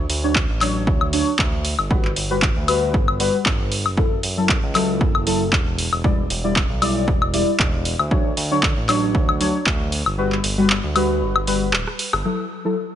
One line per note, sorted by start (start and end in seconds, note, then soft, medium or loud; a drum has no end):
0.10 0.45 D2 loud
0.10 open hi-hat loud
0.24 0.33 F#3 medium
0.24 0.33 D4 medium
0.24 0.33 C#5 loud
0.35 kick loud
0.35 clap loud
0.49 0.89 A1 medium
0.61 1.10 F#3 medium
0.61 1.10 D4 medium
0.61 1.10 C#5 loud
0.61 clap soft
0.61 open hi-hat loud
0.61 high woodblock medium
0.87 1.23 D2 medium
0.87 kick loud
1.01 high woodblock medium
1.13 1.30 F#3 medium
1.13 1.30 D4 medium
1.13 1.30 C#5 loud
1.13 open hi-hat loud
1.39 1.74 D2 loud
1.39 kick loud
1.39 clap loud
1.65 open hi-hat loud
1.79 2.13 G1 medium
1.79 high woodblock medium
1.90 2.07 G3 medium
1.90 2.07 F#4 medium
1.90 2.07 B4 medium
1.90 kick loud
2.05 clap soft
2.16 2.52 G1 loud
2.16 open hi-hat loud
2.30 2.39 G3 medium
2.30 2.39 F#4 medium
2.30 2.40 B4 loud
2.42 kick loud
2.42 clap loud
2.56 2.95 D2 medium
2.68 3.17 G3 medium
2.68 3.17 F#4 medium
2.68 3.17 B4 loud
2.68 open hi-hat loud
2.68 high woodblock medium
2.94 3.30 G1 medium
2.94 kick loud
3.08 high woodblock medium
3.20 3.36 G3 medium
3.20 3.37 F#4 medium
3.20 3.37 B4 loud
3.20 open hi-hat loud
3.46 3.87 G1 loud
3.46 kick loud
3.46 clap loud
3.72 open hi-hat loud
3.86 4.20 F#1 medium
3.86 high woodblock medium
3.97 4.14 F#3 medium
3.97 4.14 E4 medium
3.97 4.14 A4 medium
3.97 kick loud
4.23 4.59 F#1 loud
4.23 open hi-hat loud
4.37 4.46 F#3 medium
4.37 4.46 E4 medium
4.37 4.46 A4 medium
4.49 kick loud
4.49 clap loud
4.63 5.02 C#2 medium
4.75 5.24 F#3 medium
4.75 5.24 E4 medium
4.75 5.24 A4 loud
4.75 clap soft
4.75 open hi-hat loud
4.75 high woodblock medium
5.01 5.54 F#1 medium
5.01 kick loud
5.15 high woodblock medium
5.26 5.43 F#3 medium
5.26 5.43 E4 medium
5.26 5.44 A4 loud
5.26 open hi-hat loud
5.53 5.88 E1 loud
5.53 kick loud
5.53 clap loud
5.78 open hi-hat loud
5.92 6.27 E1 medium
5.92 high woodblock medium
6.04 6.21 G3 medium
6.04 6.21 E4 medium
6.04 6.21 D5 medium
6.04 kick loud
6.30 6.66 E1 loud
6.30 open hi-hat loud
6.44 6.53 G3 medium
6.44 6.53 E4 medium
6.44 6.53 D5 loud
6.56 kick loud
6.56 clap loud
6.70 7.09 B1 medium
6.82 7.31 G3 medium
6.82 7.31 E4 medium
6.82 7.31 D5 loud
6.82 open hi-hat loud
6.82 high woodblock medium
7.08 7.43 E1 medium
7.08 kick loud
7.22 high woodblock medium
7.33 7.50 G3 medium
7.33 7.50 E4 medium
7.33 7.50 D5 loud
7.33 open hi-hat loud
7.59 7.95 E1 loud
7.59 kick loud
7.59 clap loud
7.85 open hi-hat loud
7.99 8.34 D2 medium
7.99 high woodblock medium
8.11 8.28 F#3 medium
8.11 8.28 D4 medium
8.11 8.28 C#5 medium
8.11 kick loud
8.37 8.73 D2 loud
8.37 open hi-hat loud
8.51 8.60 F#3 medium
8.51 8.60 D4 medium
8.51 8.60 C#5 loud
8.63 kick loud
8.63 clap loud
8.77 9.16 A1 medium
8.89 9.38 F#3 medium
8.89 9.38 D4 medium
8.89 9.38 C#5 loud
8.89 clap soft
8.89 open hi-hat loud
8.89 high woodblock medium
9.15 9.50 D2 medium
9.15 kick loud
9.29 high woodblock medium
9.40 9.57 F#3 medium
9.40 9.57 D4 medium
9.40 9.57 C#5 loud
9.40 open hi-hat loud
9.66 10.02 D2 loud
9.66 kick loud
9.66 clap loud
9.92 open hi-hat loud
10.06 10.40 G1 medium
10.06 high woodblock medium
10.18 10.35 G3 medium
10.18 10.35 F#4 medium
10.18 10.35 B4 medium
10.32 clap soft
10.44 10.80 G1 loud
10.44 open hi-hat loud
10.58 10.67 G3 medium
10.58 10.67 F#4 medium
10.58 10.67 B4 loud
10.70 clap loud
10.84 11.23 D2 medium
10.96 11.45 G3 medium
10.96 11.45 F#4 medium
10.96 11.45 B4 loud
10.96 open hi-hat loud
10.96 high woodblock medium
11.22 11.75 G1 medium
11.36 high woodblock medium
11.47 11.64 G3 medium
11.47 11.64 F#4 medium
11.47 11.64 B4 loud
11.47 open hi-hat loud
11.73 11.85 D1 medium
11.73 cross-stick medium
11.73 clap loud
11.87 cross-stick medium
11.99 open hi-hat loud
12.13 12.23 G1 medium
12.13 cross-stick medium
12.13 high woodblock medium
12.25 12.42 F#3 medium
12.25 12.42 E4 medium
12.25 12.42 A4 medium
12.65 12.74 F#3 medium
12.65 12.74 E4 medium
12.65 12.74 A4 loud